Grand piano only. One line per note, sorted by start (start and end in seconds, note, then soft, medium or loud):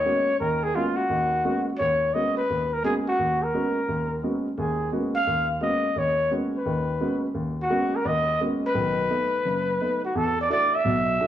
0.05 0.29 G#3 soft
0.05 0.29 A#3 soft
0.05 0.30 B3 soft
0.05 0.30 C#4 soft
0.05 0.30 F#4 soft
0.41 0.70 D#2 medium
0.41 0.71 D#3 medium
0.75 0.99 G#3 soft
0.75 0.99 A#3 soft
0.75 0.99 B3 soft
0.75 0.99 C#4 soft
0.75 1.00 F#4 soft
1.10 1.40 D#2 medium
1.10 1.40 D#3 soft
1.44 1.68 G#3 soft
1.44 1.68 A#3 soft
1.44 1.68 B3 soft
1.44 1.69 C#4 soft
1.44 1.69 F#4 soft
1.80 2.10 D#2 medium
2.14 2.38 G#3 soft
2.14 2.38 A#3 soft
2.14 2.38 B3 soft
2.14 2.38 C#4 soft
2.14 2.38 F#4 soft
2.50 2.80 D#2 soft
2.83 3.08 G#3 soft
2.83 3.08 A#3 soft
2.83 3.08 B3 soft
2.83 3.08 C#4 soft
2.83 3.08 F#4 soft
3.19 3.49 D#2 medium
3.54 3.77 G#3 soft
3.54 3.78 A#3 soft
3.54 3.78 B3 soft
3.54 3.78 C#4 soft
3.54 3.78 F#4 soft
3.88 4.18 D#2 medium
4.23 4.47 G#3 soft
4.23 4.47 A#3 soft
4.23 4.47 B3 soft
4.23 4.47 C#4 soft
4.23 4.47 F#4 soft
4.58 4.88 D#2 medium
4.92 5.16 G#3 soft
4.92 5.16 A#3 soft
4.92 5.16 B3 soft
4.92 5.17 C#4 soft
4.92 5.17 F#4 soft
5.27 5.57 D#2 medium
5.61 5.86 G#3 soft
5.61 5.86 A#3 soft
5.61 5.86 B3 soft
5.61 5.86 C#4 soft
5.61 5.86 F#4 soft
5.96 6.27 D#2 medium
6.31 6.55 G#3 soft
6.31 6.55 A#3 soft
6.31 6.55 B3 soft
6.31 6.56 C#4 soft
6.31 6.56 F#4 soft
6.65 6.96 D#2 soft
6.65 6.96 D#3 soft
7.00 7.25 G#3 soft
7.00 7.25 A#3 soft
7.00 7.25 B3 soft
7.00 7.25 C#4 soft
7.00 7.25 F#4 soft
7.35 7.66 D#2 medium
7.70 7.95 G#3 soft
7.70 7.95 A#3 soft
7.70 7.95 B3 soft
7.70 7.95 C#4 soft
7.70 7.95 F#4 medium
8.05 8.36 D#2 medium
8.40 8.65 G#3 soft
8.40 8.65 A#3 soft
8.40 8.65 B3 soft
8.40 8.65 C#4 soft
8.40 8.65 F#4 soft
8.74 9.05 B1 medium
8.74 9.05 D#3 medium
9.10 9.34 A3 soft
9.10 9.34 B3 soft
9.10 9.35 D#4 soft
9.45 9.76 F#1 medium
9.81 10.05 A3 soft
9.81 10.05 B3 soft
9.81 10.05 D#4 soft
10.15 10.45 E2 medium
10.49 10.74 A3 soft
10.49 10.74 D4 soft
10.49 10.74 E4 soft
10.49 10.74 F#4 medium
10.85 11.15 B1 medium
10.85 11.15 B2 soft
11.20 11.27 A3 soft
11.20 11.27 D4 soft
11.20 11.27 E4 soft
11.20 11.27 F#4 soft